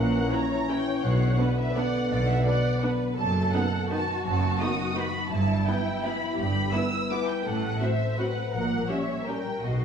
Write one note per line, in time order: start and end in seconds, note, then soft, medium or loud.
0.00 0.25 A#1 medium
0.00 0.26 A#2 medium
0.00 1.05 A#2 medium
0.00 1.00 E3 medium
0.00 0.85 C#4 soft
0.00 1.00 C#4 medium
0.00 0.48 E4 soft
0.00 0.31 A#4 medium
0.00 0.29 C#5 soft
0.00 0.31 F#5 medium
0.12 1.05 A#3 medium
0.30 0.39 C#4 medium
0.30 0.39 E4 medium
0.30 0.67 C#5 medium
0.30 0.67 C#5 soft
0.30 0.69 A#5 medium
0.50 1.05 E4 soft
0.68 0.77 C#4 medium
0.68 0.77 E4 medium
0.68 1.37 C#5 medium
0.68 1.05 C#5 soft
0.68 1.05 G5 medium
0.86 1.05 C#4 soft
1.03 1.33 B1 medium
1.03 2.09 B2 medium
1.03 1.33 B2 medium
1.03 3.14 D3 medium
1.03 3.14 B3 medium
1.03 1.59 F#5 medium
1.20 1.92 B3 soft
1.39 1.47 B3 medium
1.39 1.47 D4 medium
1.39 1.76 B4 medium
1.39 1.75 D5 soft
1.57 2.63 B4 soft
1.57 1.76 E5 medium
1.76 1.84 B3 medium
1.76 1.85 D4 medium
1.76 2.11 D5 medium
1.76 2.44 D5 medium
1.76 2.11 F#5 medium
1.93 2.99 B3 soft
2.10 2.40 B1 medium
2.10 3.19 B2 medium
2.10 2.40 B2 medium
2.10 2.28 D5 medium
2.10 2.45 F#5 medium
2.27 4.40 F#3 medium
2.27 2.47 E5 medium
2.45 2.54 B3 medium
2.45 2.55 D4 medium
2.45 2.82 D5 medium
2.45 2.81 D5 medium
2.45 2.82 F#5 medium
2.64 3.51 B4 medium
2.82 2.91 B3 medium
2.82 2.90 D4 medium
2.82 3.17 B4 medium
2.82 3.19 D5 medium
3.00 3.33 B3 soft
3.17 3.47 F#1 medium
3.17 4.23 F#2 medium
3.17 3.47 F#2 medium
3.17 3.89 A4 medium
3.17 3.50 A5 loud
3.34 4.06 B3 soft
3.52 3.66 D#3 medium
3.52 3.66 B3 medium
3.52 3.62 B3 medium
3.52 3.61 D#4 medium
3.52 3.88 B4 medium
3.52 3.90 F#5 medium
3.71 4.77 D#4 soft
3.89 4.03 D#3 medium
3.89 3.98 B3 medium
3.89 4.03 B3 medium
3.89 3.98 D#4 medium
3.89 5.31 F#4 medium
3.89 4.58 B4 medium
3.89 4.24 A5 medium
4.07 5.12 B3 medium
4.24 4.53 F#1 medium
4.24 5.32 F#2 medium
4.24 4.54 F#2 medium
4.24 4.59 A5 medium
4.41 5.32 F#3 medium
4.59 4.73 D#3 medium
4.59 4.73 B3 medium
4.59 4.69 B3 medium
4.59 4.68 D#4 medium
4.59 4.95 B4 medium
4.59 4.96 D#6 medium
4.78 5.32 D#4 medium
4.96 5.09 D#3 medium
4.96 5.04 B3 medium
4.96 5.08 B3 medium
4.96 5.04 D#4 medium
4.96 5.64 B4 soft
4.96 5.31 B5 medium
5.13 5.47 B3 medium
5.31 5.60 G1 medium
5.31 5.60 G2 medium
5.31 6.36 G2 medium
5.31 6.36 E4 medium
5.31 5.66 A5 medium
5.48 6.19 B3 medium
5.66 5.80 E3 medium
5.66 5.80 B3 medium
5.66 5.75 B3 medium
5.66 5.75 E4 medium
5.66 6.01 B4 soft
5.66 6.03 G5 medium
5.84 6.90 E4 medium
6.02 6.17 E3 medium
6.02 6.12 B3 medium
6.02 6.16 B3 soft
6.02 6.12 E4 medium
6.02 6.72 B4 soft
6.02 6.36 B5 medium
6.20 7.27 B3 soft
6.37 6.67 G1 medium
6.37 7.47 G2 medium
6.37 6.68 G2 medium
6.37 6.73 G4 medium
6.37 6.72 B5 medium
6.54 7.47 G3 medium
6.73 6.87 E3 soft
6.73 6.87 B3 medium
6.73 6.81 B3 medium
6.73 6.81 E4 medium
6.73 7.09 B4 soft
6.73 7.09 B4 medium
6.73 7.10 E6 medium
6.92 7.47 E4 soft
7.10 7.24 E3 medium
7.10 7.18 B3 medium
7.10 7.23 B3 medium
7.10 7.18 E4 medium
7.10 7.47 B4 soft
7.10 7.45 B4 medium
7.10 7.29 D6 medium
7.28 7.47 B3 soft
7.28 7.45 G5 medium
7.45 7.75 A1 medium
7.45 8.55 A2 medium
7.45 7.75 A2 medium
7.45 7.81 A4 medium
7.45 7.81 F#5 medium
7.62 8.35 A3 soft
7.80 7.95 F#3 soft
7.80 7.88 C4 medium
7.80 7.95 C4 medium
7.80 7.88 F#4 soft
7.80 8.17 C5 soft
7.80 8.18 C5 medium
7.80 8.18 E5 medium
7.99 8.55 A4 soft
8.17 8.31 F#3 soft
8.17 8.31 C4 medium
8.17 8.27 C4 soft
8.17 8.26 F#4 medium
8.17 8.53 B4 medium
8.17 8.55 C5 soft
8.17 8.51 F#5 medium
8.36 8.55 A3 soft
8.52 8.83 A#1 medium
8.52 9.65 A#2 medium
8.52 8.83 A#2 medium
8.52 8.89 A#4 medium
8.52 8.88 F#5 medium
8.70 9.44 G3 soft
8.89 9.03 G3 soft
8.89 9.03 C#4 soft
8.89 8.97 C#4 soft
8.89 8.97 G4 soft
8.89 9.25 A#4 soft
8.89 9.26 C#5 medium
8.89 9.27 E5 medium
9.08 9.65 G4 soft
9.26 9.41 G3 soft
9.26 9.35 C#4 soft
9.26 9.41 C#4 soft
9.26 9.35 G4 soft
9.26 9.63 A#4 medium
9.26 9.65 A#4 soft
9.26 9.63 G5 medium
9.45 9.65 G3 soft
9.63 9.85 B1 medium
9.63 9.85 B2 medium
9.63 9.85 F#4 soft
9.63 9.85 D#5 medium
9.81 9.85 B3 soft